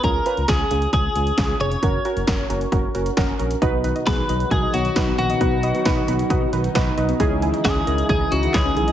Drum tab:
HH |x-xxx-xxx-xxx-xx|x-xxx-xxx-xxx-xx|x-xxx-xxx-xxx-xx|x-xxx-xxx-xxx-xx|
CP |----------------|----------------|----------------|----------------|
SD |----o-------o---|----o-------o---|----o-------o---|----o-------o---|
BD |o---o---o---o---|o---o---o---o---|o---o---o---o---|o---o---o---o---|

HH |x-xxx-xxx-xxx-xx|
CP |------------x---|
SD |----o-------o---|
BD |o---o---o---o---|